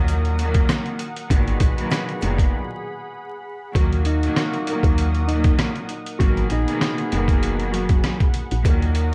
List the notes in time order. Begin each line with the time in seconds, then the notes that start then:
Already playing: D#2 A#2 D#3 F#3 A#3 D#4 A#4 F#5 D#6
0.08 closed hi-hat, shaker
0.25 closed hi-hat
0.39 A#2 D#3 F#3 A#3, closed hi-hat, shaker
0.54 kick, closed hi-hat
0.69 cross-stick, snare, closed hi-hat, shaker
0.86 closed hi-hat
0.99 closed hi-hat, shaker
1.16 closed hi-hat
1.28 G#1 A#2 B2 D#3 F#3 G#3 F#4 G#4 B4 B5, kick, closed hi-hat, shaker
1.48 closed hi-hat
1.60 A#1, kick, closed hi-hat, shaker
1.76 B2 D#3 F#3 A#3, closed hi-hat
1.91 cross-stick, snare, closed hi-hat, shaker
2.09 closed hi-hat
2.20 F#1 A#2 B2 D#3 F#3, closed hi-hat, shaker
2.38 kick, closed hi-hat
3.73 D#2 A#2 D#3 F#3 A#3 F#4 A#4 F#5 D#6, kick, closed hi-hat
3.93 closed hi-hat
4.05 D#4 D#5, closed hi-hat
4.22 A#2 D#3 F#3 A#3, closed hi-hat
4.36 cross-stick, snare, closed hi-hat
4.53 closed hi-hat
4.65 A#2 D#3 F#3 A#3, closed hi-hat
4.83 D#2, kick, closed hi-hat
4.98 closed hi-hat
5.15 closed hi-hat
5.27 A#2 D#3 F#3 D#4 D#5, closed hi-hat
5.32 A#3
5.44 kick, closed hi-hat
5.59 cross-stick, snare, closed hi-hat
5.76 closed hi-hat
5.89 closed hi-hat
6.06 closed hi-hat
6.18 G#1 B2 D#3 F#3 A#3 B3 F#4 G#4 F#5 B5, kick, closed hi-hat
6.37 closed hi-hat
6.50 A#1 D#4 D#5, closed hi-hat
6.66 B2 D#3 F#3 A#3, closed hi-hat
6.81 cross-stick, snare, closed hi-hat
6.98 closed hi-hat
7.10 F#1 B2 D#3 F#3 A#3, closed hi-hat
7.28 kick, closed hi-hat
7.43 closed hi-hat
7.60 closed hi-hat
7.72 F#3 F#4, closed hi-hat
7.89 F#1, kick, closed hi-hat
8.04 cross-stick, snare, closed hi-hat
8.20 kick, closed hi-hat
8.34 closed hi-hat
8.51 A#1, closed hi-hat
8.63 D#2 A#2 D#3 F#3 A#3 D#4 A#4 D#6, kick, closed hi-hat, shaker
8.82 closed hi-hat
8.95 closed hi-hat, shaker